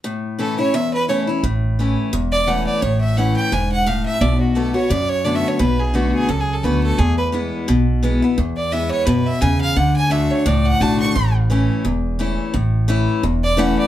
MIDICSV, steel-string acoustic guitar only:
0, 0, Header, 1, 2, 480
1, 0, Start_track
1, 0, Key_signature, 3, "major"
1, 0, Tempo, 347222
1, 65, Time_signature, 4, 2, 24, 8
1, 19175, End_track
2, 0, Start_track
2, 0, Title_t, "Steel-string acoustic guitar"
2, 0, Program_c, 0, 25
2, 57, Note_on_c, 0, 45, 76
2, 533, Note_on_c, 0, 52, 54
2, 542, Note_on_c, 0, 57, 52
2, 548, Note_on_c, 0, 61, 58
2, 555, Note_on_c, 0, 64, 58
2, 793, Note_off_c, 0, 64, 0
2, 797, Note_off_c, 0, 52, 0
2, 801, Note_off_c, 0, 57, 0
2, 804, Note_off_c, 0, 61, 0
2, 810, Note_on_c, 0, 64, 57
2, 831, Note_on_c, 0, 61, 49
2, 980, Note_off_c, 0, 45, 0
2, 1016, Note_off_c, 0, 64, 0
2, 1021, Note_on_c, 0, 40, 87
2, 1026, Note_off_c, 0, 61, 0
2, 1498, Note_on_c, 0, 52, 52
2, 1506, Note_on_c, 0, 57, 59
2, 1512, Note_on_c, 0, 61, 64
2, 1519, Note_on_c, 0, 64, 67
2, 1744, Note_off_c, 0, 64, 0
2, 1759, Note_off_c, 0, 52, 0
2, 1760, Note_on_c, 0, 64, 57
2, 1764, Note_off_c, 0, 57, 0
2, 1767, Note_off_c, 0, 61, 0
2, 1785, Note_on_c, 0, 61, 50
2, 1942, Note_off_c, 0, 40, 0
2, 1971, Note_off_c, 0, 64, 0
2, 1984, Note_off_c, 0, 61, 0
2, 1984, Note_on_c, 0, 45, 79
2, 2473, Note_on_c, 0, 52, 51
2, 2482, Note_on_c, 0, 57, 54
2, 2489, Note_on_c, 0, 61, 57
2, 2493, Note_on_c, 0, 64, 62
2, 2904, Note_off_c, 0, 45, 0
2, 2929, Note_off_c, 0, 52, 0
2, 2934, Note_off_c, 0, 57, 0
2, 2937, Note_off_c, 0, 61, 0
2, 2939, Note_off_c, 0, 64, 0
2, 2942, Note_on_c, 0, 40, 97
2, 3414, Note_on_c, 0, 52, 59
2, 3425, Note_on_c, 0, 57, 59
2, 3436, Note_on_c, 0, 61, 64
2, 3436, Note_on_c, 0, 64, 55
2, 3863, Note_off_c, 0, 40, 0
2, 3880, Note_off_c, 0, 52, 0
2, 3886, Note_off_c, 0, 57, 0
2, 3891, Note_off_c, 0, 61, 0
2, 3891, Note_off_c, 0, 64, 0
2, 3901, Note_on_c, 0, 45, 78
2, 4384, Note_on_c, 0, 52, 53
2, 4392, Note_on_c, 0, 57, 51
2, 4400, Note_on_c, 0, 61, 64
2, 4408, Note_on_c, 0, 64, 63
2, 4822, Note_off_c, 0, 45, 0
2, 4845, Note_off_c, 0, 52, 0
2, 4849, Note_off_c, 0, 57, 0
2, 4853, Note_off_c, 0, 61, 0
2, 4857, Note_off_c, 0, 64, 0
2, 4868, Note_on_c, 0, 44, 84
2, 5327, Note_off_c, 0, 44, 0
2, 5344, Note_on_c, 0, 45, 79
2, 5805, Note_off_c, 0, 45, 0
2, 5822, Note_on_c, 0, 47, 72
2, 6292, Note_on_c, 0, 50, 51
2, 6300, Note_on_c, 0, 57, 54
2, 6308, Note_on_c, 0, 59, 60
2, 6311, Note_on_c, 0, 66, 64
2, 6537, Note_off_c, 0, 66, 0
2, 6554, Note_on_c, 0, 66, 55
2, 6557, Note_off_c, 0, 50, 0
2, 6561, Note_off_c, 0, 57, 0
2, 6565, Note_off_c, 0, 59, 0
2, 6582, Note_on_c, 0, 59, 43
2, 6743, Note_off_c, 0, 47, 0
2, 6769, Note_off_c, 0, 66, 0
2, 6780, Note_on_c, 0, 42, 101
2, 6783, Note_off_c, 0, 59, 0
2, 7252, Note_on_c, 0, 50, 53
2, 7261, Note_on_c, 0, 57, 61
2, 7271, Note_on_c, 0, 59, 65
2, 7276, Note_on_c, 0, 66, 61
2, 7701, Note_off_c, 0, 42, 0
2, 7719, Note_off_c, 0, 50, 0
2, 7724, Note_off_c, 0, 57, 0
2, 7728, Note_off_c, 0, 59, 0
2, 7731, Note_off_c, 0, 66, 0
2, 7732, Note_on_c, 0, 47, 83
2, 8207, Note_on_c, 0, 50, 59
2, 8218, Note_on_c, 0, 57, 60
2, 8223, Note_on_c, 0, 59, 62
2, 8232, Note_on_c, 0, 66, 55
2, 8657, Note_off_c, 0, 47, 0
2, 8676, Note_off_c, 0, 50, 0
2, 8682, Note_off_c, 0, 57, 0
2, 8685, Note_off_c, 0, 59, 0
2, 8689, Note_off_c, 0, 66, 0
2, 8690, Note_on_c, 0, 42, 86
2, 9169, Note_on_c, 0, 50, 52
2, 9179, Note_on_c, 0, 57, 63
2, 9187, Note_on_c, 0, 59, 64
2, 9193, Note_on_c, 0, 66, 67
2, 9617, Note_off_c, 0, 42, 0
2, 9638, Note_off_c, 0, 50, 0
2, 9643, Note_off_c, 0, 57, 0
2, 9646, Note_off_c, 0, 59, 0
2, 9649, Note_off_c, 0, 66, 0
2, 9657, Note_on_c, 0, 40, 75
2, 10123, Note_on_c, 0, 52, 58
2, 10135, Note_on_c, 0, 56, 56
2, 10142, Note_on_c, 0, 59, 52
2, 10149, Note_on_c, 0, 64, 66
2, 10580, Note_off_c, 0, 40, 0
2, 10594, Note_off_c, 0, 52, 0
2, 10600, Note_off_c, 0, 56, 0
2, 10604, Note_off_c, 0, 59, 0
2, 10607, Note_off_c, 0, 64, 0
2, 10617, Note_on_c, 0, 47, 90
2, 11095, Note_on_c, 0, 52, 59
2, 11102, Note_on_c, 0, 56, 56
2, 11106, Note_on_c, 0, 59, 60
2, 11115, Note_on_c, 0, 64, 72
2, 11352, Note_off_c, 0, 64, 0
2, 11358, Note_off_c, 0, 52, 0
2, 11362, Note_off_c, 0, 56, 0
2, 11364, Note_off_c, 0, 59, 0
2, 11368, Note_on_c, 0, 64, 56
2, 11389, Note_on_c, 0, 59, 52
2, 11540, Note_off_c, 0, 47, 0
2, 11576, Note_off_c, 0, 64, 0
2, 11580, Note_on_c, 0, 40, 78
2, 11586, Note_off_c, 0, 59, 0
2, 12053, Note_on_c, 0, 52, 60
2, 12059, Note_on_c, 0, 56, 56
2, 12068, Note_on_c, 0, 59, 55
2, 12072, Note_on_c, 0, 64, 63
2, 12502, Note_off_c, 0, 40, 0
2, 12519, Note_off_c, 0, 52, 0
2, 12523, Note_off_c, 0, 56, 0
2, 12527, Note_off_c, 0, 59, 0
2, 12529, Note_off_c, 0, 64, 0
2, 12533, Note_on_c, 0, 47, 91
2, 13000, Note_off_c, 0, 47, 0
2, 13018, Note_on_c, 0, 49, 88
2, 13482, Note_off_c, 0, 49, 0
2, 13497, Note_on_c, 0, 50, 78
2, 13945, Note_off_c, 0, 50, 0
2, 13961, Note_on_c, 0, 50, 60
2, 13974, Note_on_c, 0, 57, 57
2, 13981, Note_on_c, 0, 62, 69
2, 13989, Note_on_c, 0, 66, 70
2, 14434, Note_off_c, 0, 50, 0
2, 14440, Note_off_c, 0, 57, 0
2, 14444, Note_off_c, 0, 62, 0
2, 14447, Note_off_c, 0, 66, 0
2, 14455, Note_on_c, 0, 45, 100
2, 14935, Note_on_c, 0, 50, 55
2, 14942, Note_on_c, 0, 57, 65
2, 14952, Note_on_c, 0, 62, 69
2, 14960, Note_on_c, 0, 66, 71
2, 15380, Note_off_c, 0, 45, 0
2, 15401, Note_off_c, 0, 50, 0
2, 15404, Note_off_c, 0, 57, 0
2, 15409, Note_off_c, 0, 62, 0
2, 15413, Note_off_c, 0, 66, 0
2, 15421, Note_on_c, 0, 45, 81
2, 15894, Note_on_c, 0, 52, 56
2, 15901, Note_on_c, 0, 57, 60
2, 15913, Note_on_c, 0, 61, 58
2, 15922, Note_on_c, 0, 64, 73
2, 16343, Note_off_c, 0, 45, 0
2, 16360, Note_off_c, 0, 52, 0
2, 16364, Note_off_c, 0, 57, 0
2, 16370, Note_off_c, 0, 61, 0
2, 16374, Note_off_c, 0, 64, 0
2, 16376, Note_on_c, 0, 40, 85
2, 16850, Note_on_c, 0, 52, 57
2, 16857, Note_on_c, 0, 57, 53
2, 16865, Note_on_c, 0, 61, 62
2, 16875, Note_on_c, 0, 64, 65
2, 17300, Note_off_c, 0, 40, 0
2, 17318, Note_off_c, 0, 52, 0
2, 17322, Note_off_c, 0, 57, 0
2, 17326, Note_off_c, 0, 61, 0
2, 17330, Note_on_c, 0, 45, 74
2, 17331, Note_off_c, 0, 64, 0
2, 17805, Note_on_c, 0, 52, 75
2, 17811, Note_on_c, 0, 57, 83
2, 17825, Note_on_c, 0, 61, 77
2, 17830, Note_on_c, 0, 64, 86
2, 18257, Note_off_c, 0, 45, 0
2, 18276, Note_off_c, 0, 52, 0
2, 18279, Note_off_c, 0, 57, 0
2, 18286, Note_off_c, 0, 61, 0
2, 18288, Note_off_c, 0, 64, 0
2, 18295, Note_on_c, 0, 40, 85
2, 18759, Note_on_c, 0, 52, 83
2, 18773, Note_on_c, 0, 57, 86
2, 18781, Note_on_c, 0, 61, 99
2, 18788, Note_on_c, 0, 64, 96
2, 19175, Note_off_c, 0, 40, 0
2, 19175, Note_off_c, 0, 52, 0
2, 19175, Note_off_c, 0, 57, 0
2, 19175, Note_off_c, 0, 61, 0
2, 19175, Note_off_c, 0, 64, 0
2, 19175, End_track
0, 0, End_of_file